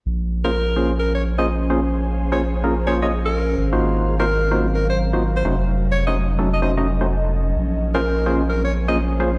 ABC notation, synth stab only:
X:1
M:4/4
L:1/16
Q:"Swing 16ths" 1/4=128
K:Bbm
V:1 name="Synth stab"
z3 [B,DFAc] z2 [B,DFAc] z4 [B,DFAc] z2 [B,DFAc] z | z3 [B,DFAc] z2 [B,DFAB] z [B,DFAc] [B,DFAe] z4 z [B,EFGc]- | [B,EFGc]3 [B,EFGc] z2 [B,EFGc] z4 [B,EFGc] z2 [=A,DEGc] z | z3 [=A,DEGc] z2 [A,DEG=A] z [A,DEGc] [A,DEGe] z [A,DEGc] z4 |
z3 [B,DFAc] z2 [B,DFAc] z4 [B,DFAc] z2 [B,DFAc] z |]